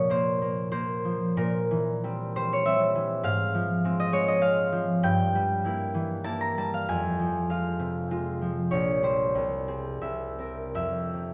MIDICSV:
0, 0, Header, 1, 2, 480
1, 0, Start_track
1, 0, Key_signature, -4, "minor"
1, 0, Tempo, 633580
1, 1039, Time_signature, 3, 2, 24, 8
1, 2000, Tempo, 601202
1, 4880, Tempo, 617920
1, 7280, Tempo, 665927
1, 7760, Tempo, 757576
1, 8605, End_track
2, 0, Start_track
2, 0, Title_t, "Harp"
2, 0, Program_c, 0, 46
2, 0, Note_on_c, 0, 46, 67
2, 0, Note_on_c, 0, 53, 49
2, 0, Note_on_c, 0, 73, 86
2, 0, Note_on_c, 0, 77, 76
2, 73, Note_on_c, 0, 58, 56
2, 82, Note_on_c, 0, 72, 83
2, 307, Note_off_c, 0, 58, 0
2, 316, Note_on_c, 0, 58, 52
2, 533, Note_off_c, 0, 72, 0
2, 535, Note_off_c, 0, 58, 0
2, 543, Note_on_c, 0, 58, 61
2, 543, Note_on_c, 0, 72, 85
2, 786, Note_off_c, 0, 53, 0
2, 795, Note_on_c, 0, 53, 50
2, 1029, Note_off_c, 0, 46, 0
2, 1037, Note_on_c, 0, 46, 70
2, 1039, Note_on_c, 0, 70, 70
2, 1061, Note_off_c, 0, 53, 0
2, 1064, Note_off_c, 0, 77, 0
2, 1067, Note_off_c, 0, 73, 0
2, 1294, Note_on_c, 0, 52, 55
2, 1384, Note_off_c, 0, 72, 0
2, 1543, Note_on_c, 0, 55, 46
2, 1547, Note_on_c, 0, 60, 53
2, 1779, Note_off_c, 0, 55, 0
2, 1787, Note_on_c, 0, 55, 58
2, 1788, Note_on_c, 0, 72, 87
2, 1916, Note_on_c, 0, 73, 84
2, 2011, Note_off_c, 0, 55, 0
2, 2013, Note_on_c, 0, 76, 94
2, 2015, Note_off_c, 0, 60, 0
2, 2021, Note_on_c, 0, 55, 49
2, 2025, Note_on_c, 0, 60, 60
2, 2099, Note_off_c, 0, 73, 0
2, 2240, Note_off_c, 0, 52, 0
2, 2250, Note_on_c, 0, 52, 53
2, 2474, Note_on_c, 0, 44, 74
2, 2480, Note_on_c, 0, 77, 112
2, 2489, Note_off_c, 0, 58, 0
2, 2491, Note_off_c, 0, 70, 0
2, 2492, Note_off_c, 0, 46, 0
2, 2498, Note_off_c, 0, 76, 0
2, 2499, Note_off_c, 0, 52, 0
2, 2502, Note_off_c, 0, 55, 0
2, 2722, Note_on_c, 0, 53, 54
2, 2957, Note_off_c, 0, 60, 0
2, 2962, Note_on_c, 0, 56, 54
2, 2969, Note_on_c, 0, 60, 62
2, 3084, Note_on_c, 0, 75, 92
2, 3174, Note_off_c, 0, 56, 0
2, 3183, Note_on_c, 0, 56, 60
2, 3190, Note_on_c, 0, 73, 92
2, 3276, Note_off_c, 0, 75, 0
2, 3310, Note_on_c, 0, 75, 89
2, 3388, Note_off_c, 0, 73, 0
2, 3408, Note_off_c, 0, 77, 0
2, 3409, Note_off_c, 0, 60, 0
2, 3411, Note_off_c, 0, 56, 0
2, 3417, Note_on_c, 0, 60, 54
2, 3419, Note_on_c, 0, 77, 94
2, 3421, Note_on_c, 0, 56, 53
2, 3510, Note_off_c, 0, 75, 0
2, 3654, Note_off_c, 0, 53, 0
2, 3663, Note_on_c, 0, 53, 51
2, 3909, Note_on_c, 0, 43, 76
2, 3913, Note_on_c, 0, 79, 106
2, 3929, Note_off_c, 0, 77, 0
2, 3930, Note_off_c, 0, 60, 0
2, 3931, Note_off_c, 0, 56, 0
2, 3932, Note_off_c, 0, 53, 0
2, 3935, Note_off_c, 0, 44, 0
2, 3941, Note_off_c, 0, 72, 0
2, 4165, Note_on_c, 0, 55, 53
2, 4398, Note_on_c, 0, 58, 49
2, 4408, Note_on_c, 0, 64, 54
2, 4638, Note_on_c, 0, 52, 56
2, 4869, Note_off_c, 0, 64, 0
2, 4870, Note_off_c, 0, 58, 0
2, 4877, Note_on_c, 0, 64, 50
2, 4877, Note_on_c, 0, 81, 90
2, 4879, Note_on_c, 0, 58, 55
2, 5005, Note_on_c, 0, 82, 87
2, 5077, Note_off_c, 0, 81, 0
2, 5126, Note_off_c, 0, 55, 0
2, 5133, Note_on_c, 0, 55, 54
2, 5139, Note_on_c, 0, 81, 82
2, 5202, Note_off_c, 0, 82, 0
2, 5261, Note_on_c, 0, 77, 80
2, 5329, Note_off_c, 0, 81, 0
2, 5372, Note_off_c, 0, 43, 0
2, 5372, Note_off_c, 0, 52, 0
2, 5373, Note_off_c, 0, 58, 0
2, 5373, Note_off_c, 0, 64, 0
2, 5374, Note_off_c, 0, 79, 0
2, 5376, Note_on_c, 0, 41, 61
2, 5378, Note_on_c, 0, 80, 98
2, 5384, Note_off_c, 0, 55, 0
2, 5453, Note_off_c, 0, 77, 0
2, 5615, Note_on_c, 0, 53, 45
2, 5849, Note_on_c, 0, 56, 40
2, 5853, Note_on_c, 0, 77, 66
2, 5861, Note_on_c, 0, 65, 52
2, 6081, Note_on_c, 0, 48, 47
2, 6317, Note_off_c, 0, 65, 0
2, 6319, Note_off_c, 0, 56, 0
2, 6326, Note_on_c, 0, 56, 48
2, 6329, Note_on_c, 0, 65, 52
2, 6554, Note_off_c, 0, 53, 0
2, 6564, Note_on_c, 0, 53, 46
2, 6793, Note_on_c, 0, 73, 74
2, 6797, Note_on_c, 0, 34, 63
2, 6813, Note_off_c, 0, 48, 0
2, 6817, Note_off_c, 0, 53, 0
2, 6817, Note_off_c, 0, 77, 0
2, 6818, Note_off_c, 0, 65, 0
2, 6819, Note_off_c, 0, 56, 0
2, 6823, Note_off_c, 0, 80, 0
2, 6824, Note_off_c, 0, 41, 0
2, 7042, Note_on_c, 0, 55, 46
2, 7047, Note_on_c, 0, 67, 44
2, 7048, Note_on_c, 0, 72, 70
2, 7290, Note_on_c, 0, 36, 50
2, 7299, Note_off_c, 0, 73, 0
2, 7301, Note_off_c, 0, 34, 0
2, 7304, Note_off_c, 0, 55, 0
2, 7304, Note_off_c, 0, 67, 0
2, 7525, Note_on_c, 0, 60, 41
2, 7529, Note_on_c, 0, 68, 47
2, 7761, Note_off_c, 0, 36, 0
2, 7767, Note_on_c, 0, 36, 47
2, 7768, Note_on_c, 0, 76, 59
2, 7783, Note_off_c, 0, 68, 0
2, 7996, Note_off_c, 0, 60, 0
2, 8003, Note_on_c, 0, 60, 32
2, 8011, Note_on_c, 0, 70, 37
2, 8226, Note_off_c, 0, 76, 0
2, 8232, Note_on_c, 0, 41, 50
2, 8235, Note_on_c, 0, 76, 69
2, 8255, Note_off_c, 0, 36, 0
2, 8262, Note_off_c, 0, 70, 0
2, 8479, Note_on_c, 0, 48, 35
2, 8605, Note_off_c, 0, 41, 0
2, 8605, Note_off_c, 0, 48, 0
2, 8605, Note_off_c, 0, 60, 0
2, 8605, Note_off_c, 0, 72, 0
2, 8605, Note_off_c, 0, 76, 0
2, 8605, End_track
0, 0, End_of_file